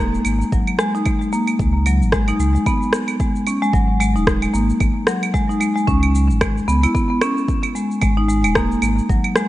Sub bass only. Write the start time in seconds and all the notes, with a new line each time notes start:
Already playing: D#1
0.26 G#1
0.53 G#1
1.60 C#2
2.01 G#1
2.39 C#2
3.73 G#1
4.16 D#1
4.54 G#1
4.80 G#1
5.88 C#2
6.30 G#1
6.68 C#2
8.02 G#1
8.44 D#1
8.83 G#1
9.09 G#1